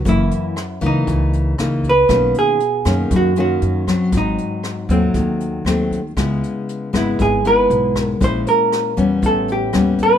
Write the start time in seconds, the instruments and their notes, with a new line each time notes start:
0.05 upright bass F#1, nylon-string guitar F#2 E3 A#3, hollow-body jazz guitar E4, kick, closed hi-hat
0.31 closed hi-hat
0.56 cross-stick, closed hi-hat
0.81 upright bass C#2, nylon-string guitar E3 A#3 D#4, kick, closed hi-hat
0.86 hollow-body jazz guitar D#4
1.07 upright bass C#2, nylon-string guitar C#3, kick, closed hi-hat
1.33 closed hi-hat
1.58 upright bass C#2, nylon-string guitar E3 A#3 D#4, cross-stick, closed hi-hat
1.84 kick, closed hi-hat
1.89 hollow-body jazz guitar B4
2.09 upright bass B1, nylon-string guitar B2 D#3 A#3 C#4, kick, cross-stick, closed hi-hat
2.34 closed hi-hat
2.39 hollow-body jazz guitar G#4
2.60 closed hi-hat
2.85 upright bass F#2, nylon-string guitar D#3 A#3 C#4, kick, cross-stick, closed hi-hat
3.11 upright bass F#2, nylon-string guitar F#2, kick, closed hi-hat
3.16 hollow-body jazz guitar F#4
3.36 nylon-string guitar D#3 A#3 C#4, closed hi-hat
3.40 hollow-body jazz guitar F#4
3.62 upright bass F#2, closed hi-hat
3.87 nylon-string guitar F#3 C4, kick, cross-stick, closed hi-hat
4.12 upright bass G#1, nylon-string guitar G#2, kick, closed hi-hat
4.17 hollow-body jazz guitar D#4
4.38 closed hi-hat
4.63 cross-stick, closed hi-hat
4.89 upright bass D#2, nylon-string guitar F#3 A3 C4, hollow-body jazz guitar C4, kick, closed hi-hat
5.14 upright bass D#2, nylon-string guitar D#3, kick, closed hi-hat
5.40 closed hi-hat
5.65 upright bass D#2, nylon-string guitar F#3 A3 C4, cross-stick, closed hi-hat
5.91 kick, closed hi-hat
6.17 upright bass C#2, nylon-string guitar C#3 G#3 B3 E4, kick, cross-stick, closed hi-hat
6.43 closed hi-hat
6.69 closed hi-hat
6.93 upright bass G#1, nylon-string guitar G#3 B3 E4, kick, cross-stick, closed hi-hat
6.97 hollow-body jazz guitar E4
7.19 upright bass G#1, nylon-string guitar G#2, hollow-body jazz guitar G#4, kick, closed hi-hat
7.45 nylon-string guitar G#3 B3 E4, hollow-body jazz guitar B4, closed hi-hat
7.70 upright bass B1, closed hi-hat
7.96 kick, cross-stick, closed hi-hat
8.00 hollow-body jazz guitar A#4
8.21 upright bass A#1, nylon-string guitar A#2 G#3 C#4 E4, hollow-body jazz guitar C5, kick, closed hi-hat
8.47 hollow-body jazz guitar A#4, closed hi-hat
8.72 cross-stick, closed hi-hat
8.97 upright bass E2, nylon-string guitar G3 B3 C#4, kick, closed hi-hat
9.22 upright bass A1, nylon-string guitar A2, hollow-body jazz guitar A4, kick, closed hi-hat
9.48 closed hi-hat
9.52 hollow-body jazz guitar G4
9.73 upright bass D#2, nylon-string guitar G3 B3 C#4, cross-stick, closed hi-hat
9.98 kick, closed hi-hat
10.03 hollow-body jazz guitar B4